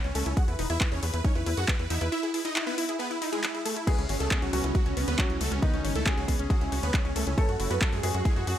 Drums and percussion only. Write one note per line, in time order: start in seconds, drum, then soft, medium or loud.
0.04 closed hi-hat soft
0.15 open hi-hat loud
0.26 closed hi-hat medium
0.37 kick loud
0.37 closed hi-hat medium
0.48 closed hi-hat soft
0.59 open hi-hat loud
0.70 closed hi-hat medium
0.81 kick loud
0.81 clap loud
0.81 closed hi-hat medium
0.92 closed hi-hat soft
1.03 open hi-hat loud
1.14 closed hi-hat medium
1.25 kick loud
1.25 closed hi-hat medium
1.35 closed hi-hat soft
1.46 open hi-hat loud
1.57 closed hi-hat medium
1.68 kick loud
1.68 clap loud
1.68 closed hi-hat medium
1.79 closed hi-hat soft
1.90 open hi-hat loud
2.01 closed hi-hat medium
2.12 closed hi-hat medium
2.23 closed hi-hat soft
2.34 open hi-hat loud
2.45 closed hi-hat medium
2.56 clap loud
2.56 closed hi-hat medium
2.67 closed hi-hat soft
2.78 open hi-hat loud
2.89 closed hi-hat medium
3.00 closed hi-hat medium
3.11 closed hi-hat soft
3.22 open hi-hat loud
3.33 closed hi-hat medium
3.44 clap loud
3.44 closed hi-hat medium
3.55 closed hi-hat soft
3.66 open hi-hat loud
3.77 closed hi-hat medium
3.87 kick loud
3.87 closed hi-hat medium
3.87 crash medium
3.98 closed hi-hat soft
4.09 open hi-hat loud
4.20 closed hi-hat medium
4.31 kick loud
4.31 clap loud
4.31 closed hi-hat medium
4.42 closed hi-hat soft
4.53 open hi-hat loud
4.64 closed hi-hat medium
4.75 kick loud
4.75 closed hi-hat medium
4.86 closed hi-hat soft
4.97 open hi-hat loud
5.08 closed hi-hat medium
5.19 kick loud
5.19 clap loud
5.19 closed hi-hat medium
5.30 closed hi-hat soft
5.41 open hi-hat loud
5.52 closed hi-hat medium
5.62 kick loud
5.62 closed hi-hat medium
5.74 closed hi-hat soft
5.85 open hi-hat loud
5.96 closed hi-hat medium
6.06 kick loud
6.06 clap loud
6.06 closed hi-hat medium
6.18 closed hi-hat soft
6.28 kick medium
6.28 open hi-hat loud
6.39 closed hi-hat medium
6.50 kick loud
6.50 closed hi-hat medium
6.61 closed hi-hat soft
6.72 open hi-hat loud
6.83 closed hi-hat medium
6.94 kick loud
6.94 clap loud
6.94 closed hi-hat medium
7.05 closed hi-hat soft
7.16 open hi-hat loud
7.27 closed hi-hat medium
7.38 kick loud
7.38 closed hi-hat medium
7.49 closed hi-hat soft
7.60 open hi-hat loud
7.71 closed hi-hat medium
7.81 kick loud
7.81 clap loud
7.81 closed hi-hat medium
7.93 closed hi-hat soft
8.03 open hi-hat loud
8.14 closed hi-hat medium
8.25 kick loud
8.25 closed hi-hat medium
8.36 closed hi-hat soft
8.47 open hi-hat loud